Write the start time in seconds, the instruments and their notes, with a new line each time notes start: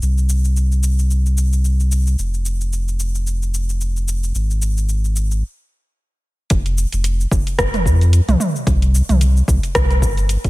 0.02 sub bass C2, shaker
0.18 shaker
0.29 shaker
0.45 shaker
0.57 shaker
0.72 shaker
0.83 shaker
0.99 shaker
1.11 shaker
1.26 shaker
1.38 shaker
1.53 shaker
1.65 shaker
1.80 shaker
1.92 shaker
2.07 shaker
2.18 sub bass F1, shaker
2.34 shaker
2.46 shaker
2.61 shaker
2.73 shaker
2.88 shaker
3.00 shaker
3.15 shaker
3.27 shaker
3.43 shaker
3.54 shaker
3.69 shaker
3.81 shaker
3.97 shaker
4.08 shaker
4.23 shaker
4.34 sub bass G#1, shaker
4.51 shaker
4.62 shaker
4.78 shaker
4.89 shaker
5.05 shaker
5.16 shaker
5.31 shaker
6.50 sub bass F1, kick, closed hi-hat, shaker
6.66 closed hi-hat, shaker
6.78 shaker
6.92 sub bass F1, closed hi-hat, shaker
7.04 closed hi-hat, shaker
7.21 shaker
7.31 sub bass F1, kick, shaker
7.47 closed hi-hat, shaker
7.59 sub bass F1, kick, cross-stick, closed hi-hat, shaker
7.74 closed hi-hat, mid tom, shaker
7.86 sub bass F2, kick, shaker
8.01 closed hi-hat, shaker
8.13 closed hi-hat, shaker
8.28 sub bass C2, closed hi-hat, mid tom, shaker
8.40 mid tom, shaker
8.56 shaker
8.67 sub bass C2, kick, closed hi-hat, shaker
8.82 closed hi-hat, shaker
8.95 shaker
9.09 sub bass C2, closed hi-hat, mid tom, shaker
9.21 closed hi-hat, shaker
9.37 shaker
9.48 sub bass C2, kick, shaker
9.63 closed hi-hat, shaker
9.75 sub bass C2, kick, cross-stick, closed hi-hat, shaker
9.91 closed hi-hat, shaker
10.02 sub bass G1, kick, shaker
10.17 closed hi-hat, shaker
10.29 closed hi-hat, shaker
10.44 sub bass G1, kick, closed hi-hat, shaker